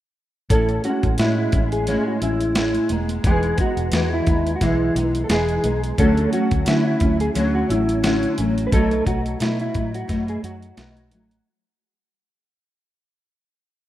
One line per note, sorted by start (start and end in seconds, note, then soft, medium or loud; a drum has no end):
0.49 0.78 A1 loud
0.49 0.84 A2 medium
0.49 0.83 C#4 medium
0.49 0.82 E4 medium
0.49 0.82 A4 medium
0.49 kick loud
0.49 closed hi-hat medium
0.69 closed hi-hat soft
0.84 1.18 G#3 soft
0.84 1.18 C#4 soft
0.84 1.18 E4 soft
0.84 1.19 F#4 medium
0.84 closed hi-hat medium
1.03 1.16 A1 medium
1.03 kick medium
1.03 closed hi-hat soft
1.18 1.53 A2 medium
1.18 1.46 A2 medium
1.18 1.53 G#3 medium
1.18 1.52 C#4 soft
1.18 1.37 E4 medium
1.18 1.51 E4 medium
1.18 snare medium
1.18 closed hi-hat medium
1.38 1.70 E4 medium
1.52 1.95 A1 medium
1.52 1.86 G#3 soft
1.52 1.87 C#4 soft
1.52 1.87 E4 soft
1.52 kick medium
1.52 closed hi-hat medium
1.72 2.07 G#4 medium
1.72 closed hi-hat soft
1.87 2.21 A2 medium
1.87 2.21 G#3 medium
1.87 2.20 C#4 medium
1.87 2.19 E4 medium
1.87 snare soft
1.87 closed hi-hat medium
2.08 2.13 F#4 medium
2.20 2.76 A1 medium
2.20 2.55 G#3 soft
2.20 2.56 C#4 soft
2.20 2.55 E4 soft
2.20 2.87 E4 medium
2.20 closed hi-hat medium
2.41 closed hi-hat medium
2.55 2.90 A2 medium
2.55 2.90 G#3 medium
2.55 2.90 C#4 medium
2.55 2.89 E4 medium
2.55 snare loud
2.55 closed hi-hat medium
2.75 closed hi-hat soft
2.89 3.17 E1 medium
2.89 3.24 G#3 soft
2.89 3.25 B3 soft
2.89 3.24 D#4 soft
2.89 closed hi-hat medium
3.09 closed hi-hat medium
3.24 3.52 E1 loud
3.24 3.59 E3 medium
3.24 3.59 G#3 medium
3.24 3.59 B3 medium
3.24 3.58 D#4 medium
3.24 3.60 G#4 medium
3.24 kick loud
3.24 closed hi-hat medium
3.43 closed hi-hat soft
3.58 3.93 G#3 soft
3.58 3.94 B3 soft
3.58 3.93 D#4 medium
3.58 4.13 F#4 medium
3.58 kick medium
3.58 closed hi-hat medium
3.77 3.89 E1 medium
3.77 closed hi-hat soft
3.92 4.20 E2 medium
3.92 4.27 E3 medium
3.92 4.28 G#3 medium
3.92 4.28 B3 medium
3.92 4.26 D#4 medium
3.92 snare loud
3.92 closed hi-hat medium
4.14 4.55 E4 medium
4.27 4.54 D#2 medium
4.27 4.61 G#3 soft
4.27 4.61 B3 soft
4.27 4.61 D#4 soft
4.27 kick medium
4.27 closed hi-hat medium
4.47 closed hi-hat soft
4.56 4.62 F#4 medium
4.61 4.89 B1 medium
4.61 4.96 E3 medium
4.61 4.96 G#3 medium
4.61 4.95 B3 medium
4.61 5.20 E4 medium
4.61 kick medium
4.61 snare soft
4.61 closed hi-hat medium
4.95 5.23 B1 medium
4.95 5.28 G#3 soft
4.95 5.29 B3 soft
4.95 5.30 D#4 soft
4.95 closed hi-hat medium
5.15 closed hi-hat medium
5.24 5.30 A4 medium
5.29 5.57 E1 medium
5.29 5.64 E3 medium
5.29 5.64 G#3 medium
5.29 5.64 B3 medium
5.29 5.62 D#4 medium
5.29 5.80 G#4 loud
5.29 snare loud
5.29 closed hi-hat medium
5.49 closed hi-hat soft
5.64 5.91 B1 medium
5.64 5.98 G#3 soft
5.64 5.98 B3 soft
5.64 5.98 D#4 soft
5.64 closed hi-hat medium
5.84 closed hi-hat soft
5.98 6.26 D2 loud
5.98 6.32 D3 medium
5.98 6.33 F#3 medium
5.98 6.32 A3 medium
5.98 6.30 C#4 medium
5.98 6.31 A4 loud
5.98 kick loud
5.98 closed hi-hat medium
6.17 closed hi-hat soft
6.32 6.65 F#3 soft
6.32 6.66 A3 soft
6.32 6.66 C#4 soft
6.32 6.68 F#4 medium
6.32 closed hi-hat medium
6.51 6.64 D2 medium
6.51 kick medium
6.51 closed hi-hat soft
6.66 7.01 D3 medium
6.66 6.94 D3 medium
6.66 7.01 F#3 medium
6.66 7.00 A3 medium
6.66 6.99 C#4 medium
6.66 6.85 E4 medium
6.66 snare medium
6.66 closed hi-hat medium
6.86 7.18 E4 medium
7.00 7.28 D2 medium
7.00 7.34 F#3 soft
7.00 7.34 A3 soft
7.00 7.35 C#4 medium
7.00 kick medium
7.00 closed hi-hat medium
7.20 7.30 G#4 medium
7.20 closed hi-hat soft
7.34 7.63 D2 medium
7.34 7.69 D3 medium
7.34 7.69 F#3 medium
7.34 7.69 A3 medium
7.34 7.68 C#4 medium
7.34 snare soft
7.34 closed hi-hat medium
7.55 7.70 F#4 medium
7.69 8.24 A1 medium
7.69 8.03 F#3 soft
7.69 8.03 A3 soft
7.69 8.03 C#4 medium
7.69 8.34 E4 medium
7.69 closed hi-hat medium
7.89 closed hi-hat medium
8.02 8.37 D3 medium
8.02 8.38 F#3 medium
8.02 8.38 A3 medium
8.02 8.36 C#4 medium
8.02 snare loud
8.02 closed hi-hat medium
8.23 closed hi-hat soft
8.37 8.66 A1 medium
8.37 8.71 F#3 soft
8.37 8.72 A3 soft
8.37 8.72 C#4 soft
8.37 closed hi-hat medium
8.58 closed hi-hat soft
8.67 8.73 B4 medium
8.71 9.00 B1 medium
8.71 9.06 B2 medium
8.71 9.06 F#3 medium
8.71 9.05 A3 medium
8.71 9.04 D#4 medium
8.71 9.07 A4 loud
8.71 kick loud
8.71 closed hi-hat medium
8.91 closed hi-hat soft
9.05 9.34 B1 medium
9.05 9.39 F#3 soft
9.05 9.40 A3 soft
9.05 9.40 D#4 medium
9.05 9.41 F#4 medium
9.05 kick medium
9.05 closed hi-hat medium
9.26 closed hi-hat soft
9.39 9.74 B2 medium
9.39 9.68 B2 medium
9.39 9.75 F#3 medium
9.39 9.73 A3 medium
9.39 9.73 D#4 medium
9.39 9.59 E4 medium
9.39 snare loud
9.39 closed hi-hat medium
9.59 9.92 E4 medium
9.59 closed hi-hat soft
9.74 10.02 A2 medium
9.74 10.07 F#3 soft
9.74 10.07 A3 soft
9.74 10.08 D#4 soft
9.74 kick medium
9.74 closed hi-hat medium
9.94 10.29 F#4 medium
9.94 closed hi-hat soft
10.08 10.37 F#2 medium
10.08 10.43 B2 medium
10.08 10.43 F#3 medium
10.08 10.43 A3 medium
10.08 10.42 D#4 medium
10.08 kick medium
10.08 snare soft
10.08 closed hi-hat medium
10.28 10.44 G#4 medium
10.28 closed hi-hat soft
10.43 10.71 F#2 medium
10.43 10.77 F#3 soft
10.43 10.77 A3 soft
10.43 10.77 D#4 soft
10.43 11.08 F#4 medium
10.43 closed hi-hat medium
10.62 closed hi-hat soft
10.77 11.12 B1 medium
10.77 11.11 B2 medium
10.77 11.12 F#3 medium
10.77 11.11 A3 medium
10.77 11.10 D#4 medium
10.77 snare loud
10.77 closed hi-hat medium
10.97 closed hi-hat soft
11.11 11.39 A1 medium
11.11 11.47 F#3 soft
11.11 11.46 A3 soft
11.11 11.45 D#4 soft
11.11 closed hi-hat medium
11.31 closed hi-hat medium